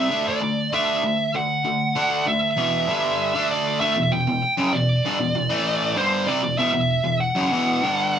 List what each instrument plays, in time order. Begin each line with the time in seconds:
Already playing: lead electric guitar E5
0.10 overdriven electric guitar D3 A3 D4
0.28 lead electric guitar D5
0.41 overdriven electric guitar D3 A3
0.73 overdriven electric guitar D3 A3 D4, lead electric guitar E5
1.03 overdriven electric guitar D3 A3
1.34 overdriven electric guitar D3 A3, lead electric guitar F#5
1.65 overdriven electric guitar D3 A3
1.95 overdriven electric guitar D3 A3 D4
2.26 overdriven electric guitar D3 A3, lead electric guitar E5
2.57 overdriven electric guitar E2 B2 E3
2.88 overdriven electric guitar G2 D3 G3
3.35 overdriven electric guitar D3 A3 D4
3.51 lead electric guitar D5
3.80 overdriven electric guitar D3 A3, lead electric guitar E5
3.96 overdriven electric guitar E2 B2
4.12 overdriven electric guitar E2 B2, lead electric guitar G5
4.27 overdriven electric guitar E2 B2
4.42 muted overdriven electric guitar stroke
4.57 overdriven electric guitar F#2 C#3
4.73 overdriven electric guitar E2 B2, lead electric guitar D5
5.05 overdriven electric guitar G2 D3
5.20 overdriven electric guitar E2 B2
5.35 overdriven electric guitar E2 B2
5.49 overdriven electric guitar A2 E3 A3
5.96 overdriven electric guitar G2 D3 G3, lead electric guitar C5
6.27 overdriven electric guitar C3 G3, lead electric guitar D5
6.43 overdriven electric guitar E2 B2
6.58 overdriven electric guitar E2 B2, lead electric guitar E5
6.73 overdriven electric guitar E2 B2
7.04 overdriven electric guitar E2 B2
7.21 lead electric guitar F#5
7.35 overdriven electric guitar F#2 C#3
7.51 overdriven electric guitar E2 B2 E3
7.82 overdriven electric guitar G2 D3 G3